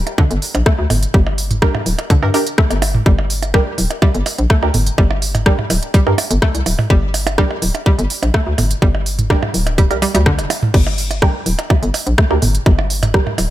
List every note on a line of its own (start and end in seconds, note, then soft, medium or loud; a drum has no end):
0.07 closed hi-hat soft
0.07 percussion blips soft
0.18 0.21 D3 loud
0.18 kick loud
0.18 percussion blips soft
0.31 0.38 G1 loud
0.31 closed hi-hat soft
0.42 open hi-hat medium
0.55 0.62 A#1 medium
0.55 closed hi-hat soft
0.55 percussion blips soft
0.66 0.72 A3 medium
0.66 kick loud
0.66 cross-stick medium
0.66 percussion blips medium
0.79 0.86 D2 medium
0.90 1.07 G1 medium
0.90 mid tom medium
0.90 open hi-hat medium
0.90 percussion blips soft
1.03 closed hi-hat soft
1.14 1.68 G1 medium
1.14 1.17 G3 medium
1.14 kick loud
1.14 percussion blips soft
1.27 percussion blips soft
1.38 open hi-hat medium
1.51 closed hi-hat soft
1.51 mid tom medium
1.62 1.68 G3 medium
1.62 1.73 D4 medium
1.62 1.73 G4 medium
1.62 1.73 A#4 medium
1.62 kick loud
1.62 cross-stick medium
1.62 percussion blips soft
1.75 mid tom medium
1.75 percussion blips medium
1.86 1.95 D1 medium
1.86 open hi-hat medium
1.99 closed hi-hat soft
1.99 percussion blips soft
2.10 2.13 D3 loud
2.10 kick loud
2.10 closed hi-hat soft
2.23 2.30 G2 medium
2.23 2.29 D4 medium
2.23 2.29 G4 medium
2.23 2.29 A#4 loud
2.23 percussion blips soft
2.34 2.45 D4 loud
2.34 2.45 G4 medium
2.34 2.45 A#4 loud
2.34 open hi-hat medium
2.34 percussion blips soft
2.47 closed hi-hat soft
2.58 2.64 A3 medium
2.58 kick loud
2.58 cross-stick medium
2.71 3.00 G1 medium
2.71 closed hi-hat soft
2.71 percussion blips soft
2.82 open hi-hat medium
2.82 percussion blips medium
2.95 mid tom medium
3.06 3.60 G1 loud
3.06 3.09 G3 medium
3.06 kick loud
3.19 percussion blips soft
3.30 open hi-hat medium
3.42 closed hi-hat soft
3.42 percussion blips soft
3.54 3.60 G3 medium
3.54 3.65 D4 medium
3.54 3.65 G4 medium
3.54 3.65 A#4 loud
3.54 kick loud
3.54 cross-stick medium
3.54 percussion blips soft
3.78 3.87 D1 medium
3.78 open hi-hat medium
3.90 closed hi-hat soft
3.90 percussion blips soft
4.02 4.10 G3 medium
4.02 kick loud
4.02 percussion blips medium
4.15 4.22 G1 loud
4.15 closed hi-hat soft
4.26 open hi-hat medium
4.26 percussion blips soft
4.38 4.46 A#1 medium
4.38 closed hi-hat soft
4.50 4.56 A3 medium
4.50 kick loud
4.50 cross-stick medium
4.50 percussion blips soft
4.63 4.70 D2 medium
4.63 4.69 D4 medium
4.63 4.69 G4 medium
4.63 4.69 A#4 medium
4.63 percussion blips soft
4.74 4.91 G1 medium
4.74 mid tom medium
4.74 open hi-hat medium
4.87 closed hi-hat soft
4.98 5.52 G1 loud
4.98 5.01 G3 medium
4.98 kick loud
4.98 percussion blips soft
5.11 percussion blips medium
5.22 open hi-hat medium
5.35 closed hi-hat soft
5.35 mid tom medium
5.35 percussion blips soft
5.46 5.52 G3 medium
5.46 5.57 D4 medium
5.46 5.57 G4 medium
5.46 5.57 A#4 medium
5.46 kick loud
5.46 cross-stick medium
5.59 mid tom medium
5.59 percussion blips soft
5.70 5.79 D1 medium
5.70 open hi-hat medium
5.70 percussion blips soft
5.83 closed hi-hat soft
5.94 6.02 G3 medium
5.94 kick loud
5.94 closed hi-hat soft
6.07 6.14 G2 medium
6.07 6.13 D4 medium
6.07 6.13 G4 medium
6.07 6.13 A#4 loud
6.07 percussion blips soft
6.18 open hi-hat medium
6.18 percussion blips medium
6.31 6.38 G1 loud
6.31 closed hi-hat medium
6.42 6.48 A3 medium
6.42 kick loud
6.42 cross-stick medium
6.42 percussion blips soft
6.55 6.62 C2 medium
6.55 closed hi-hat soft
6.66 6.75 D1 medium
6.66 open hi-hat medium
6.66 percussion blips soft
6.79 mid tom medium
6.79 percussion blips soft
6.90 7.44 G1 loud
6.90 6.93 G3 medium
6.90 kick loud
7.14 open hi-hat medium
7.14 percussion blips soft
7.27 closed hi-hat soft
7.27 percussion blips medium
7.38 7.44 G3 medium
7.38 7.49 D4 medium
7.38 7.49 G4 medium
7.38 7.49 A#4 loud
7.38 kick loud
7.38 cross-stick medium
7.51 percussion blips soft
7.62 7.71 D1 medium
7.62 open hi-hat loud
7.75 closed hi-hat soft
7.75 percussion blips soft
7.86 7.94 G3 medium
7.86 kick loud
7.86 percussion blips soft
7.99 8.06 G1 loud
7.99 closed hi-hat soft
8.10 open hi-hat medium
8.23 8.30 A#1 medium
8.23 closed hi-hat soft
8.23 percussion blips soft
8.34 8.40 A3 medium
8.34 kick loud
8.34 cross-stick medium
8.34 percussion blips medium
8.47 8.54 D2 medium
8.58 8.75 G1 medium
8.58 mid tom medium
8.58 open hi-hat medium
8.58 percussion blips soft
8.71 closed hi-hat soft
8.82 9.36 G1 loud
8.82 8.85 G3 medium
8.82 kick loud
8.82 percussion blips soft
8.95 percussion blips soft
9.06 open hi-hat medium
9.19 closed hi-hat soft
9.19 mid tom medium
9.30 9.36 G3 medium
9.30 9.41 D4 medium
9.30 9.41 G4 medium
9.30 9.41 A#4 medium
9.30 kick loud
9.30 cross-stick medium
9.30 percussion blips soft
9.43 mid tom medium
9.43 percussion blips medium
9.54 9.92 D1 medium
9.54 open hi-hat medium
9.67 closed hi-hat soft
9.67 percussion blips soft
9.78 9.86 G3 medium
9.78 kick loud
9.78 closed hi-hat soft
9.91 10.07 C2 medium
9.91 9.97 D4 medium
9.91 9.97 G4 medium
9.91 9.97 A#4 medium
9.91 closed hi-hat soft
9.91 percussion blips soft
10.02 10.08 G3 medium
10.02 open hi-hat medium
10.02 percussion blips soft
10.15 10.40 D2 loud
10.15 10.22 G3 medium
10.15 closed hi-hat medium
10.26 10.32 D3 loud
10.26 kick loud
10.26 cross-stick medium
10.39 10.46 F1 medium
10.39 closed hi-hat soft
10.39 percussion blips soft
10.50 open hi-hat medium
10.50 percussion blips medium
10.63 mid tom loud
10.74 11.28 G1 medium
10.74 10.77 G3 medium
10.74 kick loud
10.74 crash medium
10.87 percussion blips soft
10.98 open hi-hat medium
11.11 closed hi-hat soft
11.11 percussion blips soft
11.22 11.28 G3 medium
11.22 11.33 D4 medium
11.22 11.33 G4 medium
11.22 11.33 A#4 loud
11.22 kick loud
11.22 cross-stick medium
11.22 percussion blips soft
11.46 11.55 D1 medium
11.46 open hi-hat medium
11.59 closed hi-hat soft
11.59 percussion blips soft
11.70 11.78 G3 medium
11.70 kick loud
11.70 percussion blips medium
11.83 11.90 G1 loud
11.83 closed hi-hat soft
11.94 open hi-hat medium
11.94 percussion blips soft
12.07 12.14 A#1 medium
12.07 closed hi-hat soft
12.18 12.24 A3 medium
12.18 kick loud
12.18 cross-stick loud
12.18 percussion blips soft
12.31 12.38 D2 medium
12.31 12.37 D4 medium
12.31 12.37 G4 medium
12.31 12.37 A#4 medium
12.31 percussion blips soft
12.42 12.59 G1 medium
12.42 mid tom loud
12.42 open hi-hat medium
12.55 closed hi-hat soft
12.66 13.20 G1 loud
12.66 12.69 G3 medium
12.66 kick loud
12.66 percussion blips soft
12.79 percussion blips medium
12.90 open hi-hat medium
13.03 closed hi-hat soft
13.03 mid tom medium
13.03 percussion blips soft
13.14 13.20 G3 medium
13.14 13.25 D4 medium
13.14 13.25 G4 medium
13.14 13.25 A#4 medium
13.14 kick loud
13.14 cross-stick loud
13.27 mid tom medium
13.27 percussion blips soft
13.38 13.47 D1 medium
13.38 open hi-hat medium
13.38 percussion blips soft